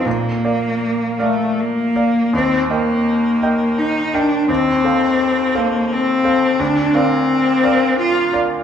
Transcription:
<<
  \new Staff \with { instrumentName = "Grand piano" } { \time 3/4 \key bes \major \tempo 4 = 84 bes,8 <bes' d'' f''>4 <bes' d'' f''>4 <bes' d'' f''>8 | ees,8 <bes' ees'' g''>4 <bes' ees'' g''>4 <bes' ees'' g''>8 | ees,8 <a' c'' f''>4 <a' c'' f''>4 <a' c'' f''>8 | d,8 <bes' d'' f''>4 <bes' d'' f''>4 <bes' d'' f''>8 | }
  \new Staff \with { instrumentName = "Cello" } { \time 3/4 \key bes \major bes4. a8 bes4 | c'8 bes4. ees'8 d'8 | c'4. bes8 c'4 | d'8 c'4. f'8 r8 | }
>>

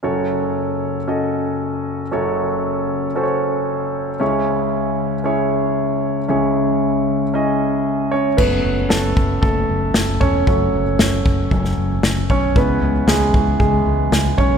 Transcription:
<<
  \new Staff \with { instrumentName = "Grand piano" } { \time 4/4 \key fis \dorian \tempo 4 = 115 << { r1 | r1 | r1 | r2. r8 <cis' cis''>8 |
<b b'>4 <a a'>4 <a a'>4. <cis' cis''>8~ | <cis' cis''>2~ <cis' cis''>8 r4 <cis' cis''>8 | <b b'>4 <gis gis'>4 <gis gis'>4. <cis' cis''>8 | } \\ { <cis' fis' a' cis''>2 <cis' fis' a' dis''>2 | <cis' fis' a' cis''>2 <cis' fis' a' c'' cis''>2 | <cis' e' gis' cis''>2 <cis' e' gis' cis''>2 | <cis' e' gis' cis''>2 <cis' e' gis' dis''>2 |
r1 | r1 | r1 | } >> }
  \new Staff \with { instrumentName = "Grand piano" } { \clef bass \time 4/4 \key fis \dorian <fis,, fis,>1 | <fis,, fis,>1 | <cis, cis>1 | <cis, cis>1 |
<fis a cis'>8 r2. r8 | <fis a cis'>8 r4. <fis a cis'>8 r4. | <e gis cis'>8 r4 <e gis cis'>8 r2 | }
  \new Staff \with { instrumentName = "Fingered electric bass" } { \clef bass \time 4/4 \key fis \dorian r1 | r1 | r1 | r1 |
fis,,8 fis,,8 fis,,8 fis,,8 fis,,8 fis,,8 fis,,8 e,,8 | fis,,8 fis,,8 fis,,8 fis,,8 fis,,8 fis,,8 fis,,8 b,,8 | cis,8 cis,8 cis,8 cis,8 cis,8 cis,8 cis,8 b,,8 | }
  \new DrumStaff \with { instrumentName = "Drums" } \drummode { \time 4/4 r4 r4 r4 r4 | r4 r4 r4 r4 | r4 r4 r4 r4 | r4 r4 r4 r4 |
<cymc bd>4 sn8 bd8 bd4 sn8 bd8 | bd4 sn8 bd8 bd16 sn8. sn8 bd8 | bd4 sn8 bd8 bd4 sn8 bd8 | }
>>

